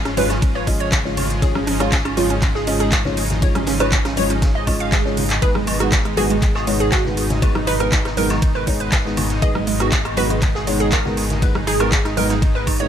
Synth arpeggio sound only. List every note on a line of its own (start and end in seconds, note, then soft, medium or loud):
0.05 0.12 C#4 medium
0.17 0.25 B4 medium
0.30 0.37 C#4 medium
0.42 0.50 C#4 medium
0.55 0.62 C#5 medium
0.67 0.75 C#4 medium
0.80 1.33 C#5 medium
1.42 1.50 G#4 loud
1.55 1.62 C#4 medium
1.67 1.75 C#4 medium
1.80 1.87 F4 loud
1.92 2.00 C#4 medium
2.05 2.12 C#4 medium
2.17 2.25 F4 loud
2.30 2.37 C#4 medium
2.42 2.50 C#4 medium
2.55 2.62 G#4 medium
2.67 2.75 C#4 medium
2.80 3.33 G#4 medium
3.42 3.50 C#5 loud
3.55 3.62 C#4 medium
3.67 3.75 C#4 medium
3.80 3.87 B4 medium
3.92 4.00 C#4 medium
4.05 4.12 C#4 medium
4.17 4.25 C#5 medium
4.30 4.37 C#4 medium
4.42 4.50 C#4 medium
4.55 4.62 D#5 medium
4.67 4.75 C#4 medium
4.80 5.33 F5 medium
5.42 5.50 G#4 loud
5.55 5.62 G#3 medium
5.67 5.75 G#3 medium
5.80 5.87 F#4 medium
5.92 6.00 G#3 medium
6.05 6.12 G#3 medium
6.17 6.25 F#4 loud
6.30 6.37 G#3 medium
6.42 6.50 G#3 medium
6.55 6.62 G#4 medium
6.67 6.75 G#3 medium
6.80 7.33 G#4 loud
7.42 7.50 B4 loud
7.55 7.62 D#4 medium
7.67 7.75 D#4 medium
7.80 7.87 A#4 loud
7.92 8.00 D#4 medium
8.05 8.12 D#4 medium
8.17 8.25 A#4 loud
8.30 8.37 D#4 medium
8.42 8.50 D#4 medium
8.55 8.62 B4 medium
8.67 8.75 D#4 medium
8.80 9.33 B4 medium
9.42 9.50 G#4 loud
9.55 9.62 G#3 medium
9.67 9.75 G#3 medium
9.80 9.87 F#4 medium
9.92 10.00 G#3 medium
10.05 10.12 G#3 medium
10.17 10.25 F#4 medium
10.30 10.37 G#3 medium
10.42 10.50 G#3 medium
10.55 10.62 G#4 medium
10.67 10.75 G#3 medium
10.80 11.33 G#4 medium
11.42 11.50 B4 loud
11.55 11.62 D#4 medium
11.67 11.75 D#4 medium
11.80 11.87 A#4 loud
11.92 12.00 D#4 medium
12.05 12.12 D#4 medium
12.17 12.25 A#4 loud
12.30 12.37 D#4 medium
12.42 12.50 D#4 medium
12.55 12.62 B4 medium
12.67 12.75 D#4 medium
12.80 12.88 C#5 medium